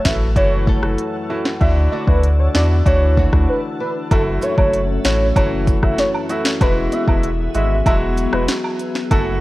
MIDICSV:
0, 0, Header, 1, 7, 480
1, 0, Start_track
1, 0, Key_signature, 3, "minor"
1, 0, Tempo, 625000
1, 1238, Time_signature, 4, 2, 24, 8
1, 7224, End_track
2, 0, Start_track
2, 0, Title_t, "Soft synth lead"
2, 0, Program_c, 0, 80
2, 37, Note_on_c, 0, 76, 88
2, 123, Note_off_c, 0, 76, 0
2, 275, Note_on_c, 0, 73, 114
2, 615, Note_off_c, 0, 73, 0
2, 1235, Note_on_c, 0, 76, 103
2, 1321, Note_off_c, 0, 76, 0
2, 1476, Note_on_c, 0, 74, 81
2, 1562, Note_off_c, 0, 74, 0
2, 1596, Note_on_c, 0, 71, 69
2, 1682, Note_off_c, 0, 71, 0
2, 1836, Note_on_c, 0, 73, 66
2, 1922, Note_off_c, 0, 73, 0
2, 1958, Note_on_c, 0, 74, 83
2, 2043, Note_off_c, 0, 74, 0
2, 2197, Note_on_c, 0, 73, 102
2, 2536, Note_off_c, 0, 73, 0
2, 2679, Note_on_c, 0, 71, 85
2, 2764, Note_off_c, 0, 71, 0
2, 2917, Note_on_c, 0, 71, 79
2, 3003, Note_off_c, 0, 71, 0
2, 3159, Note_on_c, 0, 69, 112
2, 3244, Note_off_c, 0, 69, 0
2, 3399, Note_on_c, 0, 73, 90
2, 3484, Note_off_c, 0, 73, 0
2, 3518, Note_on_c, 0, 73, 85
2, 3689, Note_off_c, 0, 73, 0
2, 3877, Note_on_c, 0, 73, 83
2, 4049, Note_off_c, 0, 73, 0
2, 4117, Note_on_c, 0, 73, 88
2, 4203, Note_off_c, 0, 73, 0
2, 4478, Note_on_c, 0, 76, 81
2, 4564, Note_off_c, 0, 76, 0
2, 4599, Note_on_c, 0, 73, 87
2, 4684, Note_off_c, 0, 73, 0
2, 4839, Note_on_c, 0, 76, 81
2, 4924, Note_off_c, 0, 76, 0
2, 5079, Note_on_c, 0, 71, 108
2, 5164, Note_off_c, 0, 71, 0
2, 5319, Note_on_c, 0, 76, 81
2, 5404, Note_off_c, 0, 76, 0
2, 5438, Note_on_c, 0, 76, 75
2, 5609, Note_off_c, 0, 76, 0
2, 5798, Note_on_c, 0, 76, 90
2, 5969, Note_off_c, 0, 76, 0
2, 6039, Note_on_c, 0, 76, 93
2, 6124, Note_off_c, 0, 76, 0
2, 6397, Note_on_c, 0, 71, 79
2, 6483, Note_off_c, 0, 71, 0
2, 6996, Note_on_c, 0, 69, 104
2, 7082, Note_off_c, 0, 69, 0
2, 7224, End_track
3, 0, Start_track
3, 0, Title_t, "Ambient pad"
3, 0, Program_c, 1, 92
3, 0, Note_on_c, 1, 73, 78
3, 0, Note_on_c, 1, 78, 69
3, 0, Note_on_c, 1, 81, 71
3, 0, Note_on_c, 1, 88, 89
3, 1218, Note_off_c, 1, 81, 0
3, 1219, Note_off_c, 1, 73, 0
3, 1236, Note_on_c, 1, 62, 75
3, 1236, Note_on_c, 1, 81, 74
3, 3128, Note_off_c, 1, 78, 0
3, 3128, Note_off_c, 1, 88, 0
3, 3138, Note_off_c, 1, 62, 0
3, 3138, Note_off_c, 1, 81, 0
3, 3156, Note_on_c, 1, 69, 72
3, 3157, Note_on_c, 1, 61, 79
3, 3157, Note_on_c, 1, 66, 75
3, 3158, Note_on_c, 1, 76, 91
3, 5058, Note_off_c, 1, 61, 0
3, 5058, Note_off_c, 1, 69, 0
3, 5058, Note_off_c, 1, 76, 0
3, 5079, Note_on_c, 1, 68, 72
3, 5079, Note_on_c, 1, 76, 88
3, 5080, Note_on_c, 1, 59, 80
3, 6979, Note_off_c, 1, 68, 0
3, 6980, Note_off_c, 1, 59, 0
3, 6999, Note_on_c, 1, 61, 82
3, 7001, Note_on_c, 1, 69, 74
3, 7224, Note_off_c, 1, 61, 0
3, 7224, Note_off_c, 1, 66, 0
3, 7224, Note_off_c, 1, 69, 0
3, 7224, Note_off_c, 1, 76, 0
3, 7224, End_track
4, 0, Start_track
4, 0, Title_t, "Grand piano"
4, 0, Program_c, 2, 0
4, 34, Note_on_c, 2, 57, 76
4, 37, Note_on_c, 2, 64, 70
4, 39, Note_on_c, 2, 66, 82
4, 184, Note_off_c, 2, 57, 0
4, 186, Note_off_c, 2, 64, 0
4, 187, Note_off_c, 2, 66, 0
4, 274, Note_on_c, 2, 57, 88
4, 276, Note_on_c, 2, 64, 84
4, 279, Note_on_c, 2, 66, 96
4, 607, Note_off_c, 2, 57, 0
4, 608, Note_off_c, 2, 64, 0
4, 610, Note_off_c, 2, 66, 0
4, 635, Note_on_c, 2, 57, 69
4, 637, Note_on_c, 2, 64, 65
4, 639, Note_on_c, 2, 66, 78
4, 785, Note_off_c, 2, 57, 0
4, 786, Note_off_c, 2, 64, 0
4, 787, Note_off_c, 2, 66, 0
4, 993, Note_on_c, 2, 57, 75
4, 996, Note_on_c, 2, 64, 71
4, 998, Note_on_c, 2, 66, 80
4, 1144, Note_off_c, 2, 57, 0
4, 1145, Note_off_c, 2, 64, 0
4, 1146, Note_off_c, 2, 66, 0
4, 1234, Note_on_c, 2, 62, 93
4, 1236, Note_on_c, 2, 64, 84
4, 1238, Note_on_c, 2, 66, 97
4, 1567, Note_off_c, 2, 62, 0
4, 1568, Note_off_c, 2, 64, 0
4, 1569, Note_off_c, 2, 66, 0
4, 1594, Note_on_c, 2, 62, 73
4, 1597, Note_on_c, 2, 64, 66
4, 1599, Note_on_c, 2, 66, 76
4, 1744, Note_off_c, 2, 62, 0
4, 1746, Note_off_c, 2, 64, 0
4, 1747, Note_off_c, 2, 66, 0
4, 1953, Note_on_c, 2, 62, 75
4, 1955, Note_on_c, 2, 64, 68
4, 1958, Note_on_c, 2, 66, 79
4, 2104, Note_off_c, 2, 62, 0
4, 2105, Note_off_c, 2, 64, 0
4, 2106, Note_off_c, 2, 66, 0
4, 2192, Note_on_c, 2, 62, 89
4, 2195, Note_on_c, 2, 64, 81
4, 2197, Note_on_c, 2, 66, 105
4, 2526, Note_off_c, 2, 62, 0
4, 2528, Note_off_c, 2, 64, 0
4, 2529, Note_off_c, 2, 66, 0
4, 2552, Note_on_c, 2, 62, 71
4, 2555, Note_on_c, 2, 64, 67
4, 2557, Note_on_c, 2, 66, 80
4, 2703, Note_off_c, 2, 62, 0
4, 2705, Note_off_c, 2, 64, 0
4, 2706, Note_off_c, 2, 66, 0
4, 3153, Note_on_c, 2, 57, 92
4, 3155, Note_on_c, 2, 64, 85
4, 3158, Note_on_c, 2, 66, 105
4, 3487, Note_off_c, 2, 57, 0
4, 3488, Note_off_c, 2, 64, 0
4, 3489, Note_off_c, 2, 66, 0
4, 3513, Note_on_c, 2, 57, 73
4, 3516, Note_on_c, 2, 64, 69
4, 3518, Note_on_c, 2, 66, 85
4, 3664, Note_off_c, 2, 57, 0
4, 3665, Note_off_c, 2, 64, 0
4, 3666, Note_off_c, 2, 66, 0
4, 3874, Note_on_c, 2, 57, 76
4, 3876, Note_on_c, 2, 64, 71
4, 3879, Note_on_c, 2, 66, 83
4, 4024, Note_off_c, 2, 57, 0
4, 4025, Note_off_c, 2, 64, 0
4, 4027, Note_off_c, 2, 66, 0
4, 4112, Note_on_c, 2, 57, 94
4, 4115, Note_on_c, 2, 64, 85
4, 4116, Note_on_c, 2, 66, 103
4, 4446, Note_off_c, 2, 57, 0
4, 4448, Note_off_c, 2, 64, 0
4, 4448, Note_off_c, 2, 66, 0
4, 4473, Note_on_c, 2, 57, 75
4, 4476, Note_on_c, 2, 64, 71
4, 4478, Note_on_c, 2, 66, 86
4, 4624, Note_off_c, 2, 57, 0
4, 4625, Note_off_c, 2, 64, 0
4, 4626, Note_off_c, 2, 66, 0
4, 4832, Note_on_c, 2, 57, 81
4, 4835, Note_on_c, 2, 64, 68
4, 4838, Note_on_c, 2, 66, 86
4, 4983, Note_off_c, 2, 57, 0
4, 4985, Note_off_c, 2, 64, 0
4, 4986, Note_off_c, 2, 66, 0
4, 5073, Note_on_c, 2, 56, 93
4, 5076, Note_on_c, 2, 64, 91
4, 5078, Note_on_c, 2, 66, 104
4, 5407, Note_off_c, 2, 56, 0
4, 5408, Note_off_c, 2, 64, 0
4, 5409, Note_off_c, 2, 66, 0
4, 5436, Note_on_c, 2, 56, 77
4, 5438, Note_on_c, 2, 64, 73
4, 5440, Note_on_c, 2, 66, 86
4, 5585, Note_off_c, 2, 56, 0
4, 5586, Note_off_c, 2, 64, 0
4, 5587, Note_off_c, 2, 66, 0
4, 5795, Note_on_c, 2, 56, 79
4, 5797, Note_on_c, 2, 64, 70
4, 5800, Note_on_c, 2, 66, 83
4, 5945, Note_off_c, 2, 56, 0
4, 5946, Note_off_c, 2, 64, 0
4, 5947, Note_off_c, 2, 66, 0
4, 6035, Note_on_c, 2, 56, 91
4, 6037, Note_on_c, 2, 64, 86
4, 6040, Note_on_c, 2, 66, 106
4, 6367, Note_off_c, 2, 56, 0
4, 6368, Note_off_c, 2, 64, 0
4, 6370, Note_off_c, 2, 66, 0
4, 6395, Note_on_c, 2, 56, 75
4, 6398, Note_on_c, 2, 64, 68
4, 6400, Note_on_c, 2, 66, 84
4, 6545, Note_off_c, 2, 56, 0
4, 6546, Note_off_c, 2, 64, 0
4, 6547, Note_off_c, 2, 66, 0
4, 6995, Note_on_c, 2, 57, 97
4, 6997, Note_on_c, 2, 64, 89
4, 7000, Note_on_c, 2, 66, 111
4, 7224, Note_off_c, 2, 57, 0
4, 7224, Note_off_c, 2, 64, 0
4, 7224, Note_off_c, 2, 66, 0
4, 7224, End_track
5, 0, Start_track
5, 0, Title_t, "Nylon-string guitar"
5, 0, Program_c, 3, 24
5, 0, Note_on_c, 3, 42, 80
5, 0, Note_on_c, 3, 54, 68
5, 0, Note_on_c, 3, 57, 61
5, 0, Note_on_c, 3, 61, 61
5, 0, Note_on_c, 3, 69, 65
5, 274, Note_off_c, 3, 54, 0
5, 277, Note_on_c, 3, 52, 71
5, 512, Note_off_c, 3, 61, 0
5, 514, Note_off_c, 3, 57, 0
5, 517, Note_on_c, 3, 57, 62
5, 522, Note_on_c, 3, 61, 59
5, 523, Note_off_c, 3, 69, 0
5, 526, Note_on_c, 3, 69, 66
5, 988, Note_off_c, 3, 61, 0
5, 997, Note_on_c, 3, 61, 62
5, 1237, Note_off_c, 3, 42, 0
5, 1237, Note_on_c, 3, 50, 83
5, 1285, Note_off_c, 3, 61, 0
5, 1474, Note_off_c, 3, 57, 0
5, 1477, Note_on_c, 3, 57, 60
5, 1481, Note_on_c, 3, 62, 58
5, 1483, Note_off_c, 3, 69, 0
5, 1486, Note_on_c, 3, 66, 67
5, 1504, Note_off_c, 3, 52, 0
5, 2197, Note_on_c, 3, 52, 68
5, 2434, Note_off_c, 3, 62, 0
5, 2436, Note_off_c, 3, 57, 0
5, 2439, Note_on_c, 3, 57, 62
5, 2443, Note_on_c, 3, 62, 61
5, 2444, Note_off_c, 3, 66, 0
5, 2447, Note_on_c, 3, 66, 67
5, 2909, Note_off_c, 3, 62, 0
5, 2918, Note_on_c, 3, 62, 62
5, 3157, Note_off_c, 3, 50, 0
5, 3158, Note_on_c, 3, 42, 80
5, 3206, Note_off_c, 3, 62, 0
5, 3395, Note_off_c, 3, 57, 0
5, 3398, Note_on_c, 3, 57, 62
5, 4115, Note_off_c, 3, 52, 0
5, 4118, Note_on_c, 3, 52, 74
5, 4141, Note_off_c, 3, 66, 0
5, 5078, Note_off_c, 3, 42, 0
5, 5078, Note_off_c, 3, 52, 0
5, 5078, Note_on_c, 3, 52, 82
5, 5126, Note_off_c, 3, 57, 0
5, 5318, Note_on_c, 3, 59, 65
5, 6037, Note_on_c, 3, 54, 73
5, 6998, Note_on_c, 3, 42, 81
5, 7021, Note_off_c, 3, 52, 0
5, 7046, Note_off_c, 3, 59, 0
5, 7224, Note_off_c, 3, 42, 0
5, 7224, Note_off_c, 3, 54, 0
5, 7224, End_track
6, 0, Start_track
6, 0, Title_t, "Sub bass"
6, 0, Program_c, 4, 38
6, 38, Note_on_c, 4, 33, 97
6, 275, Note_on_c, 4, 30, 107
6, 287, Note_off_c, 4, 33, 0
6, 587, Note_off_c, 4, 30, 0
6, 636, Note_on_c, 4, 30, 89
6, 740, Note_off_c, 4, 30, 0
6, 1238, Note_on_c, 4, 38, 117
6, 1445, Note_off_c, 4, 38, 0
6, 1596, Note_on_c, 4, 38, 93
6, 1907, Note_off_c, 4, 38, 0
6, 1958, Note_on_c, 4, 40, 95
6, 2165, Note_off_c, 4, 40, 0
6, 2196, Note_on_c, 4, 38, 114
6, 2507, Note_off_c, 4, 38, 0
6, 2556, Note_on_c, 4, 38, 92
6, 2660, Note_off_c, 4, 38, 0
6, 3156, Note_on_c, 4, 30, 111
6, 3364, Note_off_c, 4, 30, 0
6, 3516, Note_on_c, 4, 30, 87
6, 3827, Note_off_c, 4, 30, 0
6, 3877, Note_on_c, 4, 33, 97
6, 4084, Note_off_c, 4, 33, 0
6, 4116, Note_on_c, 4, 30, 114
6, 4427, Note_off_c, 4, 30, 0
6, 4477, Note_on_c, 4, 30, 88
6, 4581, Note_off_c, 4, 30, 0
6, 5076, Note_on_c, 4, 28, 124
6, 5284, Note_off_c, 4, 28, 0
6, 5435, Note_on_c, 4, 28, 97
6, 5747, Note_off_c, 4, 28, 0
6, 5798, Note_on_c, 4, 32, 94
6, 6005, Note_off_c, 4, 32, 0
6, 6037, Note_on_c, 4, 28, 111
6, 6348, Note_off_c, 4, 28, 0
6, 6396, Note_on_c, 4, 28, 87
6, 6500, Note_off_c, 4, 28, 0
6, 6998, Note_on_c, 4, 30, 113
6, 7205, Note_off_c, 4, 30, 0
6, 7224, End_track
7, 0, Start_track
7, 0, Title_t, "Drums"
7, 38, Note_on_c, 9, 38, 108
7, 39, Note_on_c, 9, 36, 85
7, 115, Note_off_c, 9, 36, 0
7, 115, Note_off_c, 9, 38, 0
7, 276, Note_on_c, 9, 36, 94
7, 278, Note_on_c, 9, 42, 69
7, 353, Note_off_c, 9, 36, 0
7, 355, Note_off_c, 9, 42, 0
7, 518, Note_on_c, 9, 36, 86
7, 594, Note_off_c, 9, 36, 0
7, 637, Note_on_c, 9, 37, 89
7, 714, Note_off_c, 9, 37, 0
7, 756, Note_on_c, 9, 42, 87
7, 833, Note_off_c, 9, 42, 0
7, 1116, Note_on_c, 9, 38, 112
7, 1193, Note_off_c, 9, 38, 0
7, 1236, Note_on_c, 9, 42, 71
7, 1237, Note_on_c, 9, 36, 103
7, 1313, Note_off_c, 9, 42, 0
7, 1314, Note_off_c, 9, 36, 0
7, 1596, Note_on_c, 9, 36, 91
7, 1673, Note_off_c, 9, 36, 0
7, 1718, Note_on_c, 9, 42, 67
7, 1795, Note_off_c, 9, 42, 0
7, 1956, Note_on_c, 9, 38, 106
7, 2033, Note_off_c, 9, 38, 0
7, 2196, Note_on_c, 9, 36, 94
7, 2199, Note_on_c, 9, 42, 72
7, 2273, Note_off_c, 9, 36, 0
7, 2276, Note_off_c, 9, 42, 0
7, 2437, Note_on_c, 9, 36, 90
7, 2514, Note_off_c, 9, 36, 0
7, 2556, Note_on_c, 9, 36, 93
7, 2556, Note_on_c, 9, 37, 91
7, 2633, Note_off_c, 9, 36, 0
7, 2633, Note_off_c, 9, 37, 0
7, 3155, Note_on_c, 9, 76, 70
7, 3156, Note_on_c, 9, 42, 77
7, 3157, Note_on_c, 9, 36, 106
7, 3232, Note_off_c, 9, 76, 0
7, 3233, Note_off_c, 9, 42, 0
7, 3234, Note_off_c, 9, 36, 0
7, 3393, Note_on_c, 9, 69, 70
7, 3397, Note_on_c, 9, 42, 53
7, 3470, Note_off_c, 9, 69, 0
7, 3474, Note_off_c, 9, 42, 0
7, 3516, Note_on_c, 9, 36, 96
7, 3517, Note_on_c, 9, 76, 65
7, 3593, Note_off_c, 9, 36, 0
7, 3594, Note_off_c, 9, 76, 0
7, 3637, Note_on_c, 9, 42, 68
7, 3713, Note_off_c, 9, 42, 0
7, 3875, Note_on_c, 9, 69, 73
7, 3876, Note_on_c, 9, 42, 57
7, 3877, Note_on_c, 9, 38, 108
7, 3951, Note_off_c, 9, 69, 0
7, 3952, Note_off_c, 9, 42, 0
7, 3953, Note_off_c, 9, 38, 0
7, 4116, Note_on_c, 9, 36, 99
7, 4118, Note_on_c, 9, 42, 74
7, 4118, Note_on_c, 9, 76, 86
7, 4192, Note_off_c, 9, 36, 0
7, 4195, Note_off_c, 9, 42, 0
7, 4195, Note_off_c, 9, 76, 0
7, 4356, Note_on_c, 9, 69, 74
7, 4357, Note_on_c, 9, 36, 90
7, 4358, Note_on_c, 9, 42, 53
7, 4433, Note_off_c, 9, 69, 0
7, 4434, Note_off_c, 9, 36, 0
7, 4434, Note_off_c, 9, 42, 0
7, 4476, Note_on_c, 9, 37, 99
7, 4477, Note_on_c, 9, 36, 96
7, 4553, Note_off_c, 9, 36, 0
7, 4553, Note_off_c, 9, 37, 0
7, 4596, Note_on_c, 9, 42, 89
7, 4597, Note_on_c, 9, 38, 73
7, 4673, Note_off_c, 9, 42, 0
7, 4674, Note_off_c, 9, 38, 0
7, 4719, Note_on_c, 9, 76, 73
7, 4796, Note_off_c, 9, 76, 0
7, 4835, Note_on_c, 9, 42, 57
7, 4837, Note_on_c, 9, 69, 71
7, 4912, Note_off_c, 9, 42, 0
7, 4913, Note_off_c, 9, 69, 0
7, 4955, Note_on_c, 9, 38, 118
7, 5032, Note_off_c, 9, 38, 0
7, 5077, Note_on_c, 9, 36, 110
7, 5077, Note_on_c, 9, 42, 76
7, 5077, Note_on_c, 9, 76, 66
7, 5154, Note_off_c, 9, 36, 0
7, 5154, Note_off_c, 9, 42, 0
7, 5154, Note_off_c, 9, 76, 0
7, 5316, Note_on_c, 9, 69, 65
7, 5317, Note_on_c, 9, 42, 56
7, 5393, Note_off_c, 9, 69, 0
7, 5394, Note_off_c, 9, 42, 0
7, 5436, Note_on_c, 9, 36, 93
7, 5441, Note_on_c, 9, 76, 63
7, 5513, Note_off_c, 9, 36, 0
7, 5518, Note_off_c, 9, 76, 0
7, 5558, Note_on_c, 9, 42, 67
7, 5634, Note_off_c, 9, 42, 0
7, 5795, Note_on_c, 9, 69, 75
7, 5797, Note_on_c, 9, 42, 52
7, 5872, Note_off_c, 9, 69, 0
7, 5874, Note_off_c, 9, 42, 0
7, 6036, Note_on_c, 9, 36, 95
7, 6038, Note_on_c, 9, 42, 79
7, 6039, Note_on_c, 9, 76, 86
7, 6113, Note_off_c, 9, 36, 0
7, 6115, Note_off_c, 9, 42, 0
7, 6116, Note_off_c, 9, 76, 0
7, 6277, Note_on_c, 9, 69, 72
7, 6278, Note_on_c, 9, 42, 54
7, 6354, Note_off_c, 9, 69, 0
7, 6355, Note_off_c, 9, 42, 0
7, 6396, Note_on_c, 9, 37, 99
7, 6473, Note_off_c, 9, 37, 0
7, 6515, Note_on_c, 9, 42, 93
7, 6516, Note_on_c, 9, 38, 127
7, 6592, Note_off_c, 9, 42, 0
7, 6593, Note_off_c, 9, 38, 0
7, 6636, Note_on_c, 9, 76, 75
7, 6713, Note_off_c, 9, 76, 0
7, 6754, Note_on_c, 9, 42, 58
7, 6757, Note_on_c, 9, 69, 67
7, 6831, Note_off_c, 9, 42, 0
7, 6834, Note_off_c, 9, 69, 0
7, 6876, Note_on_c, 9, 38, 67
7, 6952, Note_off_c, 9, 38, 0
7, 6995, Note_on_c, 9, 76, 67
7, 6997, Note_on_c, 9, 36, 109
7, 6997, Note_on_c, 9, 42, 77
7, 7072, Note_off_c, 9, 76, 0
7, 7074, Note_off_c, 9, 36, 0
7, 7074, Note_off_c, 9, 42, 0
7, 7224, End_track
0, 0, End_of_file